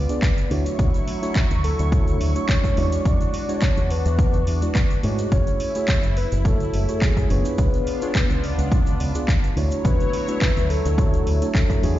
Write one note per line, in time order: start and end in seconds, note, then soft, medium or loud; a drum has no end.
0.00 0.49 B3 medium
0.00 0.49 F4 medium
0.00 0.52 B4 medium
0.00 0.49 D5 medium
0.09 0.23 B3 medium
0.09 0.23 D4 medium
0.09 0.23 F4 medium
0.09 0.24 G#4 medium
0.09 0.24 D5 medium
0.09 closed hi-hat medium
0.09 shaker medium
0.22 kick loud
0.22 clap loud
0.22 closed hi-hat soft
0.22 shaker medium
0.38 closed hi-hat soft
0.38 shaker soft
0.50 0.63 D2 loud
0.50 2.75 F#3 medium
0.50 1.19 A3 medium
0.50 1.19 D4 medium
0.50 1.19 E4 medium
0.50 2.75 E4 medium
0.50 1.19 F#4 medium
0.50 1.20 C#5 medium
0.50 5.28 C#6 medium
0.50 open hi-hat medium
0.66 closed hi-hat soft
0.66 shaker medium
0.79 0.91 D2 medium
0.79 kick loud
0.79 closed hi-hat soft
0.79 shaker medium
0.94 closed hi-hat soft
0.94 shaker soft
1.08 open hi-hat loud
1.22 1.36 A3 medium
1.22 1.36 D4 medium
1.22 1.36 E4 medium
1.22 1.37 F#4 medium
1.22 1.37 C#5 loud
1.22 closed hi-hat soft
1.22 shaker medium
1.36 kick loud
1.36 clap loud
1.36 closed hi-hat soft
1.36 shaker medium
1.50 1.72 D2 medium
1.50 closed hi-hat soft
1.50 shaker soft
1.64 2.17 A4 loud
1.64 open hi-hat medium
1.79 2.16 D2 loud
1.79 closed hi-hat soft
1.79 shaker medium
1.92 2.32 A3 medium
1.92 2.32 D4 medium
1.92 2.32 E4 medium
1.92 2.32 F#4 medium
1.92 2.32 C#5 loud
1.92 kick loud
1.92 closed hi-hat soft
1.92 shaker medium
2.08 closed hi-hat soft
2.08 shaker soft
2.21 2.32 D2 medium
2.21 open hi-hat loud
2.35 2.74 A3 medium
2.35 2.74 D4 medium
2.35 2.74 E4 medium
2.35 2.74 F#4 medium
2.35 2.74 C#5 medium
2.35 closed hi-hat soft
2.35 shaker medium
2.49 3.02 C#5 loud
2.49 kick loud
2.49 clap loud
2.49 closed hi-hat soft
2.49 shaker medium
2.64 kick medium
2.64 closed hi-hat soft
2.64 shaker soft
2.76 2.89 E2 medium
2.76 3.45 G#3 medium
2.76 3.45 D4 medium
2.76 5.30 D4 medium
2.76 3.45 E4 medium
2.76 3.46 F#4 medium
2.76 5.30 F#4 medium
2.76 3.46 D5 loud
2.76 open hi-hat medium
2.92 closed hi-hat medium
2.92 shaker medium
3.05 3.17 E2 medium
3.05 3.64 D5 loud
3.05 kick loud
3.05 closed hi-hat soft
3.05 shaker medium
3.21 closed hi-hat soft
3.21 shaker soft
3.34 open hi-hat loud
3.48 3.63 G#3 medium
3.48 3.63 D4 medium
3.48 3.63 E4 medium
3.48 3.63 F#4 medium
3.48 3.63 C#5 loud
3.48 closed hi-hat soft
3.48 shaker medium
3.62 3.92 C#5 loud
3.62 kick loud
3.62 clap loud
3.62 closed hi-hat medium
3.62 shaker medium
3.77 3.99 E2 medium
3.77 closed hi-hat soft
3.77 shaker soft
3.90 5.04 B4 medium
3.90 open hi-hat medium
4.06 4.42 E2 medium
4.06 closed hi-hat soft
4.06 shaker medium
4.19 kick loud
4.19 closed hi-hat soft
4.19 shaker medium
4.33 closed hi-hat soft
4.33 shaker soft
4.47 4.59 E2 medium
4.47 open hi-hat loud
4.62 4.76 G#3 medium
4.62 4.76 D4 medium
4.62 4.76 E4 medium
4.62 4.76 F#4 medium
4.62 4.76 D5 medium
4.62 closed hi-hat soft
4.62 shaker medium
4.75 kick loud
4.75 clap loud
4.75 closed hi-hat soft
4.75 shaker medium
4.90 closed hi-hat soft
4.90 shaker soft
5.03 5.26 G#2 loud
5.03 5.71 A3 medium
5.03 5.72 E4 medium
5.03 5.72 F#4 medium
5.03 5.72 G#4 medium
5.03 5.72 C#5 medium
5.03 open hi-hat medium
5.18 closed hi-hat soft
5.18 shaker medium
5.32 5.44 F#1 medium
5.32 7.56 E4 medium
5.32 6.13 C#5 loud
5.32 kick loud
5.32 closed hi-hat soft
5.32 shaker medium
5.47 closed hi-hat soft
5.47 shaker soft
5.60 open hi-hat loud
5.75 5.89 A3 medium
5.75 5.89 E4 medium
5.75 5.89 F#4 medium
5.75 5.90 G#4 medium
5.75 5.90 C#5 loud
5.75 closed hi-hat soft
5.75 shaker medium
5.88 kick loud
5.88 clap loud
5.88 closed hi-hat medium
5.88 shaker medium
6.03 6.25 F#1 medium
6.03 closed hi-hat soft
6.03 shaker soft
6.17 6.30 B4 medium
6.17 open hi-hat medium
6.32 6.69 F#1 medium
6.32 closed hi-hat soft
6.32 shaker medium
6.45 6.85 A3 medium
6.45 6.85 E4 medium
6.45 6.85 F#4 medium
6.45 6.85 A4 medium
6.45 7.04 A4 medium
6.45 6.85 C#5 medium
6.45 kick loud
6.45 closed hi-hat soft
6.45 shaker medium
6.60 closed hi-hat soft
6.60 shaker soft
6.74 6.85 F#1 medium
6.74 open hi-hat loud
6.88 7.27 A3 medium
6.88 7.27 E4 medium
6.88 7.27 F#4 medium
6.88 7.27 G#4 medium
6.88 7.27 C#5 medium
6.88 closed hi-hat soft
6.88 shaker medium
7.02 7.33 G#4 medium
7.02 kick loud
7.02 clap loud
7.02 closed hi-hat soft
7.02 shaker medium
7.17 kick medium
7.17 closed hi-hat soft
7.17 shaker soft
7.29 7.42 F#1 loud
7.29 7.98 B3 medium
7.29 7.98 D4 medium
7.29 7.98 F4 medium
7.29 7.98 G#4 medium
7.29 8.44 B4 medium
7.29 7.99 C#5 loud
7.29 open hi-hat medium
7.45 closed hi-hat soft
7.45 shaker medium
7.58 7.70 C#2 medium
7.58 9.55 B3 medium
7.58 9.55 D4 medium
7.58 9.55 F4 medium
7.58 kick loud
7.58 closed hi-hat soft
7.58 shaker medium
7.74 closed hi-hat soft
7.74 shaker soft
7.87 open hi-hat loud
8.02 8.16 B3 medium
8.02 8.16 D4 medium
8.02 8.16 F4 medium
8.02 8.16 G#4 medium
8.02 8.16 C#5 loud
8.02 closed hi-hat soft
8.02 shaker medium
8.15 kick loud
8.15 clap loud
8.15 closed hi-hat medium
8.15 shaker medium
8.30 8.51 C#2 medium
8.30 closed hi-hat soft
8.30 shaker soft
8.44 open hi-hat medium
8.58 8.95 C#2 loud
8.58 closed hi-hat soft
8.58 shaker medium
8.72 kick loud
8.72 closed hi-hat soft
8.72 shaker medium
8.86 closed hi-hat soft
8.86 shaker soft
9.00 9.12 C#2 medium
9.00 open hi-hat loud
9.15 9.29 B3 medium
9.15 9.29 D4 medium
9.15 9.29 F4 medium
9.15 9.29 G#4 medium
9.15 9.29 D5 medium
9.15 closed hi-hat medium
9.15 shaker medium
9.28 kick loud
9.28 clap loud
9.28 closed hi-hat soft
9.28 shaker medium
9.44 closed hi-hat soft
9.44 shaker soft
9.56 9.68 D2 loud
9.56 11.81 F#3 medium
9.56 10.24 A3 medium
9.56 10.25 D4 medium
9.56 10.25 E4 medium
9.56 11.81 E4 medium
9.56 10.25 F#4 medium
9.56 11.99 C#5 medium
9.56 10.25 C#5 medium
9.56 open hi-hat medium
9.71 closed hi-hat medium
9.71 shaker medium
9.85 9.96 D2 medium
9.85 10.71 B4 loud
9.85 kick loud
9.85 closed hi-hat medium
9.85 shaker medium
10.00 closed hi-hat soft
10.00 shaker soft
10.13 open hi-hat medium
10.28 10.42 A3 medium
10.28 10.42 D4 medium
10.28 10.42 E4 medium
10.28 10.42 F#4 medium
10.28 10.42 C#5 loud
10.28 closed hi-hat soft
10.28 shaker medium
10.41 kick loud
10.41 clap loud
10.41 closed hi-hat medium
10.41 shaker medium
10.57 10.78 D2 medium
10.57 closed hi-hat soft
10.57 shaker soft
10.70 11.83 A4 loud
10.70 open hi-hat medium
10.85 11.22 D2 loud
10.85 closed hi-hat medium
10.85 shaker medium
10.98 11.38 A3 medium
10.98 11.38 D4 medium
10.98 11.38 E4 medium
10.98 11.38 F#4 medium
10.98 11.38 C#5 loud
10.98 kick loud
10.98 closed hi-hat medium
10.98 shaker medium
11.14 closed hi-hat soft
11.14 shaker soft
11.27 11.38 D2 medium
11.27 open hi-hat medium
11.41 11.80 A3 medium
11.41 11.80 D4 medium
11.41 11.80 E4 medium
11.41 11.80 F#4 medium
11.41 11.80 C#5 medium
11.41 closed hi-hat medium
11.41 shaker medium
11.55 kick loud
11.55 clap loud
11.55 closed hi-hat soft
11.55 shaker medium
11.70 kick medium
11.70 closed hi-hat soft
11.70 shaker soft
11.82 11.95 E2 loud
11.82 11.99 G#3 medium
11.82 11.99 D4 medium
11.82 11.99 E4 medium
11.82 11.99 F#4 medium
11.82 11.99 G#4 medium
11.82 11.99 C#5 loud
11.82 open hi-hat medium